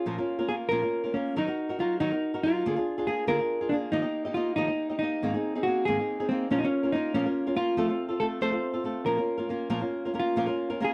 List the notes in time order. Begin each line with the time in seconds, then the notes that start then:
Already playing: F4
0.06 A#2 F3 A#3 C#4 F4 A#4
0.18 A#3 C#4 F4 A#4
0.39 A#3 C#4 F4 A#4
0.49 A#3 C#4 F4 G#4 A#4
0.71 A#2 F3 A#3 C#4 F4 A#4
0.82 A#3 C#4 F4 A#4
1.04 A#3 C#4 F4 A#4
1.14 A#3 C#4 F4 A#4
1.36 D#3 F#3 D#4 F#4 A#4
1.47 D#4 F#4 A#4
1.69 D#4 F#4 A#4
1.79 F#3 D#4 F4 F#4 A#4
2.00 D#3 F#3 D#4 F#4 A#4
2.11 D#4 F#4 A#4
2.34 D#4 F#4 A#4
2.43 F#3 D#4 F4 F#4 A#4
2.66 D3 A#3 D4 F4 G#4
2.76 D4 F4 G#4
2.98 D4 F4 G#4
3.08 A#3 D4 F4 G#4
3.27 D3 A#3 D4 F4 G#4 A#4
3.39 D4 F4 G#4
3.61 D4 F4 G#4
3.71 A#3 D4 F4 G#4
3.92 D#3 F3 A#3 D#4 G4 D#5
4.02 A#3 D#4 G4 D#5
4.25 A#3 D#4 G4 D#5
4.34 A#3 D#4 F4 G4 D#5
4.57 D#3 F3 A#3 D#4 G4 D#5
4.67 A#3 D#4 G4 D#5
4.90 A#3 D#4 G4 D#5
5.02 A#3 D#4 G4 D#5
5.22 G#2 D#3 A#3 C4 D#4 G#4
5.34 A#3 C4 D#4 G#4
5.55 A#3 C4 D#4 G#4
5.63 A#3 C4 D#4 F#4
5.68 G#4
5.87 G#2 D#3 A#3 C4 D#4 G#4
5.99 A#3 C4 D#4 G#4
6.20 A#3 C4 D#4 G#4
6.30 A#3 C4 D#4 G#4
6.50 A#2 F3 A#3 C#4 F4 A#4
6.59 D#4 A#4
6.63 A#3 C#4 F4
6.83 A#3 C#4 F4 A#4
6.92 A#3 C#4 D#4 F4 A#4
7.14 A#2 F3 A#3 C#4 F4 A#4
7.26 A#3 C#4 F4 A#4
7.47 A#3 C#4 F4 A#4
7.56 A#3 C#4 F4 A#4
7.77 F3 A3 C4 F4 A4
7.88 C4 F4 A4
8.09 C4 F4 A4
8.20 A3 C4 F4 A4
8.41 F3 A3 C4 F4 A4 C5
8.52 C4 F4 A4
8.73 C4 F4 A4
8.84 A3 C4 F4 A4
9.06 A#2 F3 A#3 C#4 F4 A#4
9.17 A#3 C#4 F4 A#4
9.38 A#3 C#4 F4 A#4
9.49 A#3 C#4 F4 A#4
9.70 A#2 F3 A#3 C#4 F4 A#4
9.81 A#3 C#4 F4 A#4
10.05 A#3 C#4 F4 A#4
10.14 A#3 C#4 F4 A#4
10.20 F4
10.36 A#2 F3 A#3 C#4 F4 A#4
10.46 A#3 C#4 F4 A#4
10.70 A#3 C#4 F4 A#4
10.80 A#3 C#4 F4 A#4
10.84 G#4